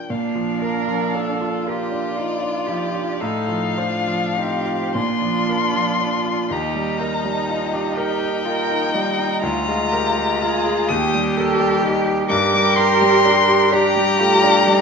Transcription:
Already playing: grand piano F3 D4 A#4, violin G5
0.09 grand piano A#2, cello D4, violin D4 F5
0.35 grand piano F3
0.61 cello A#4, grand piano A#4
0.88 grand piano F3
1.14 grand piano D4, cello A4
1.41 grand piano F4
1.66 violin F4 D5, cello G4, grand piano A#4
1.92 grand piano D4
2.16 grand piano D#4, cello F4
2.43 grand piano D4
2.66 grand piano F3, cello G4
2.95 grand piano D4
3.19 grand piano A2, violin D#4 F5, cello A4
3.48 grand piano F3
3.77 violin D4, cello F4, grand piano C5
4.07 grand piano F3
4.35 violin C4, grand piano D#4, cello G4
4.66 grand piano F4
4.94 grand piano A#2, violin D4 C6, cello F4
5.22 grand piano F3
5.49 grand piano A#4
5.75 grand piano F3
6.00 grand piano D4
6.25 grand piano F4
6.50 grand piano D#2, violin D#4 A#5, cello G4
6.75 grand piano G3
7.01 cello D#4, grand piano A#4
7.25 grand piano G3
7.49 grand piano D#4, cello F4
7.73 grand piano G4
7.97 cello G4, grand piano A#4, violin G5
8.22 grand piano D#4
8.45 grand piano F4, cello A#4
8.70 grand piano D#4
8.94 grand piano G3, cello D#4
9.19 grand piano D#4
9.42 grand piano D2, cello F4, violin F4 A#5
9.68 grand piano G#3
9.91 cello G4, grand piano A#4
10.18 grand piano G#3
10.41 grand piano F4, cello G#4
10.66 grand piano G#4
10.89 grand piano D#2, violin G4 D#6, cello G4
11.14 grand piano G3
11.36 cello A4, grand piano A#4
11.60 grand piano G3
11.82 grand piano D#4, cello G4
12.06 grand piano G4
12.27 grand piano G2, violin G4 D6, cello A#4
12.54 grand piano G3
12.77 grand piano G4, violin C6
13.02 grand piano G3
13.25 grand piano D4
13.49 grand piano G4
13.71 grand piano D4, cello G4, violin G4 A#5
13.96 grand piano G3
14.20 grand piano A3, cello F4
14.44 grand piano D4
14.67 grand piano G3, cello D#4

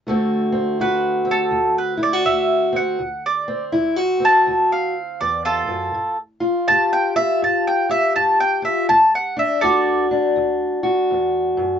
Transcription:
0.07 steel-string acoustic guitar D2 D3 A3 C4 F#4
0.52 steel-string acoustic guitar C4
0.80 steel-string acoustic guitar D2 F#4, mandolin B4
1.25 steel-string acoustic guitar C4
1.31 mandolin A4
1.51 steel-string acoustic guitar D2
1.78 mandolin B4
1.97 steel-string acoustic guitar E4
2.03 mandolin D5
2.13 steel-string acoustic guitar F#4
2.25 steel-string acoustic guitar D2, mandolin E5
2.73 steel-string acoustic guitar C4, mandolin F#5
2.99 steel-string acoustic guitar D2
3.26 mandolin D5
3.48 steel-string acoustic guitar C4
3.72 steel-string acoustic guitar D2 E4
3.96 steel-string acoustic guitar F#4
4.20 steel-string acoustic guitar C4
4.25 mandolin A5
4.47 steel-string acoustic guitar D2
4.72 mandolin F5
5.21 steel-string acoustic guitar E2, mandolin D5
5.45 mandolin F4 A4
5.67 steel-string acoustic guitar F#2
5.94 steel-string acoustic guitar G2
6.40 steel-string acoustic guitar F4
6.68 steel-string acoustic guitar G2 G4, mandolin A5
6.93 mandolin G5
7.16 steel-string acoustic guitar F4, mandolin E5
7.42 steel-string acoustic guitar G2, mandolin A5
7.67 mandolin G5
7.89 steel-string acoustic guitar G4, mandolin E5
8.16 steel-string acoustic guitar G2, mandolin A5
8.40 mandolin G5
8.62 steel-string acoustic guitar F4, mandolin E5
8.89 steel-string acoustic guitar D2, mandolin A5
9.15 mandolin F#5
9.37 steel-string acoustic guitar D4, mandolin E5
9.61 steel-string acoustic guitar D2 F#4, mandolin A4 D5
10.11 steel-string acoustic guitar D4
10.36 steel-string acoustic guitar D2
10.83 steel-string acoustic guitar F#4
11.11 steel-string acoustic guitar E2
11.57 steel-string acoustic guitar F#2

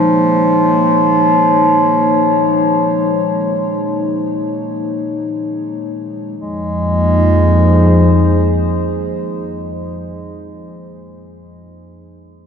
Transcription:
Already playing: bass clarinet F3, synth drone G#3, analog synth pad A#3 D#4 G#4 C#5
6.38 synth drone F2 F3, analog synth pad F3, bass clarinet G#3
6.54 analog synth pad A#3
6.73 analog synth pad D#4
6.90 analog synth pad G#4
7.09 analog synth pad C5

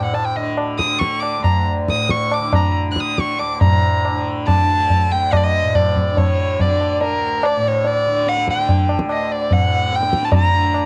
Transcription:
Already playing: tanpura D2 A2 D3
0.04 violin F#5
0.13 violin A5, tabla tin
0.24 violin G5
0.36 tanpura D3, violin D#5
0.57 tabla na
0.79 violin D#6, tabla ke
0.86 tanpura D3
0.99 violin C#6, tabla ke
1.20 violin D6, tabla na
1.39 tanpura D2
1.44 violin A#5, tabla na, tabla ge
1.89 tanpura A2, violin D#6, tabla ke
2.09 violin C#6, tabla ke
2.32 violin D6, tabla na
2.40 tanpura D3
2.53 violin A#5, tabla na, tabla ge
2.89 tanpura D3, violin F#6
2.96 violin D#6, tabla ke
3.18 violin C#6, tabla ke
3.38 tanpura D2, violin D6, tabla na
3.61 tanpura A2, violin A#5, tabla tin, tabla ge
4.05 tabla na
4.12 tanpura D3
4.47 violin A5, tabla na, tabla ge
4.62 tanpura D3
4.90 tabla tin, tabla ge
5.11 tanpura D2, violin G5
5.32 violin D#5, tabla na, tabla ge
5.37 violin D5
5.43 violin D#5
5.62 tanpura A2
5.75 violin D5, tabla na, tabla ge
5.96 tabla ge
6.12 tanpura D3
6.17 violin C#5, tabla tin, tabla ge
6.60 tanpura D3, violin D5, tabla tin, tabla ge
6.81 tabla na
7.01 violin A#4, tabla tin
7.10 tanpura D2
7.43 violin D5, tabla na
7.57 tanpura A2
7.67 violin C#5
7.84 violin D5, tabla tin
8.06 tanpura D3
8.26 violin F#5, tabla te
8.37 tabla te
8.47 violin G5, tabla ke
8.56 tanpura D3, tabla te
8.68 tabla tin, tabla ge
8.89 tabla na
8.99 tabla ke
9.04 tanpura D2
9.09 violin D#5, tabla na
9.32 violin D5
9.51 tanpura A2, violin F#5, tabla tin, tabla ge
9.93 violin G5, tabla te
10.00 tanpura D3, tabla te
10.13 tabla ke
10.23 violin A5, tabla te
10.32 violin A#5, tabla tin, tabla ge
10.48 tanpura D3
10.74 tabla na

